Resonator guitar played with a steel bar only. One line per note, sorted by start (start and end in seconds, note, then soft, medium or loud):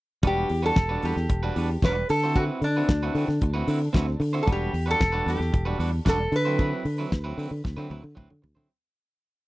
0.27 0.65 G4 medium
0.66 1.05 A4 loud
1.05 1.86 G4 medium
1.85 2.09 B4 medium
2.10 2.37 A4 loud
2.36 2.43 F#4 medium
2.64 4.18 D4 medium
4.43 4.49 A4 medium
4.52 4.91 G4 medium
4.91 5.30 A4 loud
5.30 5.78 G4 medium
6.09 6.35 A4 medium
6.36 8.14 B4 loud